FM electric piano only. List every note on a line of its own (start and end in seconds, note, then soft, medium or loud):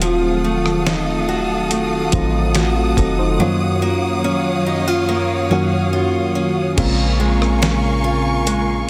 0.00 0.94 D#3 medium
0.00 0.95 F#3 medium
0.00 0.95 A3 medium
0.00 0.95 C4 medium
0.00 0.96 F4 loud
0.00 3.42 G#4 medium
2.12 2.91 D#3 medium
2.12 2.91 F#3 medium
2.12 2.55 A3 medium
2.12 2.56 C4 medium
2.12 2.56 F4 loud
2.55 2.76 A3 medium
2.55 2.75 F#4 medium
2.76 2.97 A3 medium
2.76 2.96 F4 medium
2.98 3.18 C4 medium
2.98 3.18 A4 medium
3.19 3.59 D#4 medium
3.19 3.59 C5 medium
3.39 4.44 F#2 medium
3.39 4.44 D#3 medium
3.39 3.46 F3 medium
3.39 4.45 A#3 medium
3.39 4.45 C#4 medium
3.39 4.45 F4 medium
3.46 4.48 F#3 medium
5.50 6.29 F#2 medium
5.50 6.29 D#3 medium
5.50 6.30 F#3 medium
5.50 6.30 A#3 medium
5.50 6.30 C#4 medium
5.50 6.30 F#4 loud
6.77 7.82 C#3 medium
6.77 7.82 G#3 medium
6.77 7.83 A#3 medium
6.77 7.83 C4 medium
6.77 7.83 F4 medium